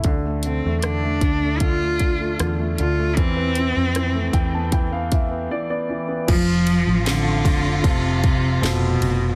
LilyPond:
<<
  \new Staff \with { instrumentName = "Violin section" } { \time 4/4 \key f \lydian \tempo 4 = 77 r1 | r1 | f'1 | }
  \new Staff \with { instrumentName = "Cello" } { \time 4/4 \key f \lydian r8 c'8 d'4 f'4 r8 f'8 | c'2 r2 | f4 d4 c4 b,4 | }
  \new Staff \with { instrumentName = "Grand piano" } { \time 4/4 \key f \lydian r1 | r4. g''16 a''16 g''16 f''16 e''8 d''16 d''8. | r1 | }
  \new Staff \with { instrumentName = "Grand piano" } { \time 4/4 \key f \lydian d16 a16 d16 a16 d16 a16 d16 a16 d16 a16 d16 a16 d16 a16 d16 a16 | e16 b'16 e16 c'16 e16 a16 e16 b16 e16 b16 e16 b16 e16 b16 e16 b16 | f4 <c' f' a'>4 <c' f' a'>4 <f' a' c''>4 | }
  \new Staff \with { instrumentName = "Fretless electric bass" } { \clef bass \time 4/4 \key f \lydian d,8. e,8. d,4. e,8 d,8 | e,8. f,8. e,4. r4 | f,,8. a,,8. f,,8 f,,4 f,,8 f,,8 | }
  \new DrumStaff \with { instrumentName = "Drums" } \drummode { \time 4/4 <hh bd>8 hh8 <hh ss>8 <hh bd>8 <hh bd>8 <hh bd>8 <hh ss>8 hh8 | <hh bd>8 hh8 <hh ss>8 <hh bd>8 <hh bd>8 <hh bd>8 r4 | <cymc bd cymr>8 cymr8 <cymr sn>8 <bd cymr>8 <bd cymr>8 <bd cymr>8 <cymr sn>8 cymr8 | }
>>